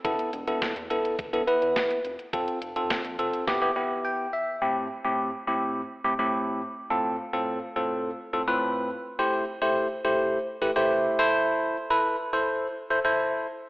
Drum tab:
HH |xxxxxxxxxxxxxxxx|xxxxxxxx--------|----------------|----------------|
SD |----o-------o---|----o---o-------|----------------|----------------|
BD |o---o---o---o---|o---o---o-------|----------------|----------------|

HH |----------------|----------------|
SD |----------------|----------------|
BD |----------------|----------------|